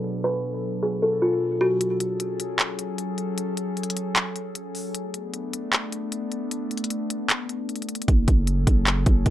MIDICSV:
0, 0, Header, 1, 5, 480
1, 0, Start_track
1, 0, Key_signature, 3, "minor"
1, 0, Tempo, 392157
1, 293, Time_signature, 4, 2, 24, 8
1, 11386, End_track
2, 0, Start_track
2, 0, Title_t, "Kalimba"
2, 0, Program_c, 0, 108
2, 0, Note_on_c, 0, 71, 89
2, 249, Note_off_c, 0, 71, 0
2, 294, Note_on_c, 0, 71, 110
2, 971, Note_off_c, 0, 71, 0
2, 1012, Note_on_c, 0, 68, 82
2, 1229, Note_off_c, 0, 68, 0
2, 1253, Note_on_c, 0, 69, 92
2, 1470, Note_off_c, 0, 69, 0
2, 1493, Note_on_c, 0, 65, 80
2, 1944, Note_off_c, 0, 65, 0
2, 1970, Note_on_c, 0, 66, 90
2, 2188, Note_off_c, 0, 66, 0
2, 11386, End_track
3, 0, Start_track
3, 0, Title_t, "Ambient pad"
3, 0, Program_c, 1, 92
3, 0, Note_on_c, 1, 47, 80
3, 0, Note_on_c, 1, 54, 73
3, 0, Note_on_c, 1, 62, 73
3, 0, Note_on_c, 1, 69, 85
3, 2164, Note_off_c, 1, 54, 0
3, 2175, Note_off_c, 1, 47, 0
3, 2175, Note_off_c, 1, 62, 0
3, 2175, Note_off_c, 1, 69, 0
3, 2213, Note_on_c, 1, 54, 78
3, 2213, Note_on_c, 1, 61, 73
3, 2213, Note_on_c, 1, 68, 73
3, 2213, Note_on_c, 1, 69, 89
3, 6014, Note_off_c, 1, 54, 0
3, 6014, Note_off_c, 1, 61, 0
3, 6015, Note_off_c, 1, 68, 0
3, 6015, Note_off_c, 1, 69, 0
3, 6053, Note_on_c, 1, 57, 81
3, 6053, Note_on_c, 1, 59, 73
3, 6053, Note_on_c, 1, 62, 88
3, 9855, Note_off_c, 1, 57, 0
3, 9855, Note_off_c, 1, 59, 0
3, 9855, Note_off_c, 1, 62, 0
3, 9892, Note_on_c, 1, 54, 79
3, 9892, Note_on_c, 1, 61, 73
3, 9892, Note_on_c, 1, 68, 73
3, 9892, Note_on_c, 1, 69, 86
3, 11386, Note_off_c, 1, 54, 0
3, 11386, Note_off_c, 1, 61, 0
3, 11386, Note_off_c, 1, 68, 0
3, 11386, Note_off_c, 1, 69, 0
3, 11386, End_track
4, 0, Start_track
4, 0, Title_t, "808-style bass"
4, 0, Program_c, 2, 38
4, 9893, Note_on_c, 2, 30, 115
4, 10123, Note_off_c, 2, 30, 0
4, 10133, Note_on_c, 2, 30, 103
4, 10594, Note_off_c, 2, 30, 0
4, 10612, Note_on_c, 2, 30, 106
4, 11074, Note_off_c, 2, 30, 0
4, 11094, Note_on_c, 2, 30, 108
4, 11324, Note_off_c, 2, 30, 0
4, 11334, Note_on_c, 2, 30, 109
4, 11386, Note_off_c, 2, 30, 0
4, 11386, End_track
5, 0, Start_track
5, 0, Title_t, "Drums"
5, 51, Note_on_c, 9, 42, 59
5, 174, Note_off_c, 9, 42, 0
5, 2213, Note_on_c, 9, 42, 85
5, 2335, Note_off_c, 9, 42, 0
5, 2452, Note_on_c, 9, 42, 73
5, 2575, Note_off_c, 9, 42, 0
5, 2691, Note_on_c, 9, 42, 73
5, 2814, Note_off_c, 9, 42, 0
5, 2934, Note_on_c, 9, 42, 85
5, 3057, Note_off_c, 9, 42, 0
5, 3173, Note_on_c, 9, 39, 112
5, 3174, Note_on_c, 9, 42, 67
5, 3295, Note_off_c, 9, 39, 0
5, 3296, Note_off_c, 9, 42, 0
5, 3412, Note_on_c, 9, 42, 72
5, 3534, Note_off_c, 9, 42, 0
5, 3652, Note_on_c, 9, 42, 71
5, 3774, Note_off_c, 9, 42, 0
5, 3891, Note_on_c, 9, 42, 64
5, 4013, Note_off_c, 9, 42, 0
5, 4133, Note_on_c, 9, 42, 81
5, 4256, Note_off_c, 9, 42, 0
5, 4372, Note_on_c, 9, 42, 73
5, 4495, Note_off_c, 9, 42, 0
5, 4613, Note_on_c, 9, 42, 48
5, 4694, Note_off_c, 9, 42, 0
5, 4694, Note_on_c, 9, 42, 60
5, 4773, Note_off_c, 9, 42, 0
5, 4773, Note_on_c, 9, 42, 76
5, 4855, Note_off_c, 9, 42, 0
5, 4855, Note_on_c, 9, 42, 87
5, 4977, Note_off_c, 9, 42, 0
5, 5093, Note_on_c, 9, 39, 112
5, 5094, Note_on_c, 9, 42, 72
5, 5216, Note_off_c, 9, 39, 0
5, 5216, Note_off_c, 9, 42, 0
5, 5333, Note_on_c, 9, 42, 64
5, 5455, Note_off_c, 9, 42, 0
5, 5572, Note_on_c, 9, 42, 72
5, 5694, Note_off_c, 9, 42, 0
5, 5811, Note_on_c, 9, 46, 48
5, 5934, Note_off_c, 9, 46, 0
5, 6053, Note_on_c, 9, 42, 83
5, 6176, Note_off_c, 9, 42, 0
5, 6292, Note_on_c, 9, 42, 75
5, 6415, Note_off_c, 9, 42, 0
5, 6531, Note_on_c, 9, 42, 76
5, 6654, Note_off_c, 9, 42, 0
5, 6774, Note_on_c, 9, 42, 83
5, 6897, Note_off_c, 9, 42, 0
5, 7013, Note_on_c, 9, 39, 112
5, 7013, Note_on_c, 9, 42, 70
5, 7135, Note_off_c, 9, 39, 0
5, 7136, Note_off_c, 9, 42, 0
5, 7252, Note_on_c, 9, 42, 74
5, 7374, Note_off_c, 9, 42, 0
5, 7492, Note_on_c, 9, 42, 75
5, 7614, Note_off_c, 9, 42, 0
5, 7731, Note_on_c, 9, 42, 60
5, 7854, Note_off_c, 9, 42, 0
5, 7973, Note_on_c, 9, 42, 79
5, 8095, Note_off_c, 9, 42, 0
5, 8213, Note_on_c, 9, 42, 47
5, 8293, Note_off_c, 9, 42, 0
5, 8293, Note_on_c, 9, 42, 63
5, 8373, Note_off_c, 9, 42, 0
5, 8373, Note_on_c, 9, 42, 74
5, 8451, Note_off_c, 9, 42, 0
5, 8451, Note_on_c, 9, 42, 73
5, 8573, Note_off_c, 9, 42, 0
5, 8693, Note_on_c, 9, 42, 83
5, 8816, Note_off_c, 9, 42, 0
5, 8932, Note_on_c, 9, 39, 112
5, 8933, Note_on_c, 9, 42, 70
5, 9055, Note_off_c, 9, 39, 0
5, 9055, Note_off_c, 9, 42, 0
5, 9172, Note_on_c, 9, 42, 65
5, 9294, Note_off_c, 9, 42, 0
5, 9413, Note_on_c, 9, 42, 46
5, 9493, Note_off_c, 9, 42, 0
5, 9493, Note_on_c, 9, 42, 53
5, 9573, Note_off_c, 9, 42, 0
5, 9573, Note_on_c, 9, 42, 58
5, 9653, Note_off_c, 9, 42, 0
5, 9653, Note_on_c, 9, 42, 64
5, 9733, Note_off_c, 9, 42, 0
5, 9733, Note_on_c, 9, 42, 73
5, 9813, Note_off_c, 9, 42, 0
5, 9813, Note_on_c, 9, 42, 78
5, 9893, Note_off_c, 9, 42, 0
5, 9893, Note_on_c, 9, 36, 119
5, 9893, Note_on_c, 9, 42, 80
5, 10015, Note_off_c, 9, 36, 0
5, 10015, Note_off_c, 9, 42, 0
5, 10132, Note_on_c, 9, 42, 75
5, 10133, Note_on_c, 9, 36, 97
5, 10255, Note_off_c, 9, 36, 0
5, 10255, Note_off_c, 9, 42, 0
5, 10371, Note_on_c, 9, 42, 75
5, 10493, Note_off_c, 9, 42, 0
5, 10613, Note_on_c, 9, 36, 93
5, 10614, Note_on_c, 9, 42, 85
5, 10735, Note_off_c, 9, 36, 0
5, 10737, Note_off_c, 9, 42, 0
5, 10853, Note_on_c, 9, 39, 111
5, 10854, Note_on_c, 9, 42, 70
5, 10976, Note_off_c, 9, 39, 0
5, 10976, Note_off_c, 9, 42, 0
5, 11092, Note_on_c, 9, 42, 71
5, 11094, Note_on_c, 9, 36, 105
5, 11215, Note_off_c, 9, 42, 0
5, 11216, Note_off_c, 9, 36, 0
5, 11332, Note_on_c, 9, 42, 71
5, 11334, Note_on_c, 9, 36, 83
5, 11386, Note_off_c, 9, 36, 0
5, 11386, Note_off_c, 9, 42, 0
5, 11386, End_track
0, 0, End_of_file